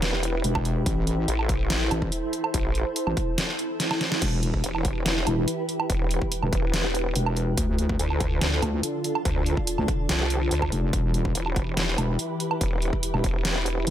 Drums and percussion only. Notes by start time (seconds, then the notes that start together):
0.02 snare, closed hi-hat
0.23 closed hi-hat
0.44 closed hi-hat
0.55 kick, low woodblock
0.65 closed hi-hat
0.86 kick, closed hi-hat
1.07 closed hi-hat
1.28 closed hi-hat
1.39 low woodblock
1.49 kick, closed hi-hat
1.70 snare, closed hi-hat
1.91 closed hi-hat, low woodblock
2.02 kick
2.12 closed hi-hat
2.33 closed hi-hat
2.44 low woodblock
2.54 kick, closed hi-hat
2.75 closed hi-hat
2.96 closed hi-hat
3.07 low woodblock
3.17 kick, closed hi-hat
3.38 snare, closed hi-hat
3.59 closed hi-hat
3.80 snare, closed hi-hat
3.91 snare, low woodblock
4.01 snare, closed hi-hat
4.12 snare
4.22 kick, closed hi-hat, crash
4.43 closed hi-hat
4.54 kick
4.64 closed hi-hat
4.75 low woodblock
4.85 kick, closed hi-hat
5.06 snare, closed hi-hat
5.27 closed hi-hat, low woodblock
5.48 closed hi-hat
5.69 closed hi-hat
5.80 low woodblock
5.90 kick, closed hi-hat
6.11 closed hi-hat
6.22 kick
6.32 closed hi-hat
6.43 low woodblock
6.53 kick, closed hi-hat
6.74 snare, closed hi-hat
6.95 closed hi-hat
7.16 closed hi-hat
7.26 low woodblock
7.37 closed hi-hat
7.58 kick, closed hi-hat
7.78 closed hi-hat
7.89 kick
7.99 closed hi-hat
8.10 low woodblock
8.20 kick, closed hi-hat
8.41 snare, closed hi-hat
8.62 closed hi-hat, low woodblock
8.83 closed hi-hat
9.04 closed hi-hat
9.15 low woodblock
9.25 kick, closed hi-hat
9.46 closed hi-hat
9.57 kick
9.67 closed hi-hat
9.78 low woodblock
9.88 kick, closed hi-hat
10.09 snare, closed hi-hat
10.30 closed hi-hat
10.51 closed hi-hat
10.62 kick, low woodblock
10.72 closed hi-hat
10.93 kick, closed hi-hat
11.14 closed hi-hat
11.25 kick
11.35 closed hi-hat
11.46 low woodblock
11.56 kick, closed hi-hat
11.77 snare, closed hi-hat
11.98 closed hi-hat, low woodblock
12.19 closed hi-hat
12.40 closed hi-hat
12.51 low woodblock
12.61 kick, closed hi-hat
12.82 closed hi-hat
12.93 kick
13.03 closed hi-hat
13.14 low woodblock
13.24 kick, closed hi-hat
13.45 snare, closed hi-hat
13.66 closed hi-hat
13.87 closed hi-hat